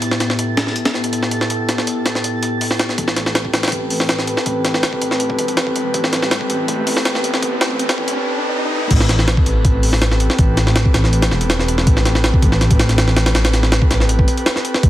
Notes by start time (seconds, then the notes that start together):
Already playing: A2 B3 E4 G4 A6
0.02 A4, closed hi-hat
0.11 snare
0.20 snare, closed hi-hat
0.30 snare
0.39 closed hi-hat
0.57 snare, closed hi-hat
0.67 snare
0.76 closed hi-hat
0.85 snare, closed hi-hat
0.94 snare
1.04 closed hi-hat
1.13 closed hi-hat
1.23 snare
1.31 closed hi-hat
1.41 snare
1.50 closed hi-hat
1.69 snare, closed hi-hat
1.78 snare
1.87 closed hi-hat
2.06 snare, closed hi-hat
2.15 snare
2.24 closed hi-hat
2.43 closed hi-hat
2.61 open hi-hat
2.71 snare
2.79 snare, closed hi-hat
2.89 snare
2.98 A1 C4 G4 A4 B4, kick, closed hi-hat, riser
3.08 snare
3.16 snare, closed hi-hat
3.26 snare
3.35 snare, closed hi-hat
3.45 kick
3.53 A1, snare, closed hi-hat
3.63 snare, closed hi-hat
3.68 snare, closed hi-hat
3.72 kick, closed hi-hat
3.90 A1, open hi-hat
4.00 snare
4.09 snare, closed hi-hat
4.19 snare
4.27 closed hi-hat
4.37 snare
4.46 A1, kick, closed hi-hat
4.65 snare, closed hi-hat
4.74 snare
4.83 snare, closed hi-hat
4.93 kick
5.01 A1, closed hi-hat
5.11 snare
5.20 closed hi-hat
5.30 kick
5.38 E1, closed hi-hat
5.48 closed hi-hat
5.57 snare, closed hi-hat
5.67 kick
5.76 closed hi-hat
5.94 A1, kick, closed hi-hat
6.04 snare
6.13 snare, closed hi-hat
6.22 snare
6.31 snare, closed hi-hat
6.41 kick
6.50 A1, closed hi-hat
6.68 A1, kick, closed hi-hat
6.87 open hi-hat
6.97 snare
7.05 snare, closed hi-hat
7.15 snare
7.24 closed hi-hat
7.34 snare
7.42 A1, kick, closed hi-hat
7.61 snare, closed hi-hat
7.71 kick
7.79 closed hi-hat
7.89 snare, closed hi-hat
7.98 A1, kick
8.08 closed hi-hat
8.91 A1 C4 G4 A4 B4, kick, closed hi-hat, crash
9.00 snare
9.09 snare, closed hi-hat
9.19 snare
9.28 snare, closed hi-hat
9.37 kick
9.46 A1, closed hi-hat
9.65 kick, closed hi-hat
9.83 A1, open hi-hat
9.93 snare
10.02 snare, closed hi-hat
10.11 snare
10.20 closed hi-hat
10.30 snare
10.39 A1, kick, closed hi-hat
10.57 snare, closed hi-hat
10.67 snare
10.76 snare, closed hi-hat
10.85 kick
10.94 A1, snare, closed hi-hat
11.04 snare
11.13 closed hi-hat
11.22 snare, closed hi-hat
11.31 E1, snare
11.41 closed hi-hat
11.50 snare, closed hi-hat
11.59 snare
11.68 closed hi-hat
11.78 snare
11.87 A1, kick, closed hi-hat
11.97 snare
12.05 snare, closed hi-hat
12.15 snare
12.24 snare, closed hi-hat
12.34 kick
12.42 A1, kick, closed hi-hat
12.52 snare
12.61 A1, snare, closed hi-hat
12.71 kick, closed hi-hat
12.79 snare, closed hi-hat
12.89 snare, closed hi-hat
12.98 snare, closed hi-hat
13.08 snare
13.16 snare, closed hi-hat
13.26 snare, closed hi-hat
13.35 A1, snare, closed hi-hat
13.45 snare, closed hi-hat
13.54 snare, closed hi-hat
13.63 snare
13.72 snare, closed hi-hat
13.82 kick
13.91 A1, snare, closed hi-hat
14.00 snare
14.09 closed hi-hat
14.19 kick
14.28 closed hi-hat
14.37 closed hi-hat
14.46 snare, closed hi-hat
14.56 snare
14.65 closed hi-hat
14.74 snare
14.83 A1 B3 E4 G4, kick, closed hi-hat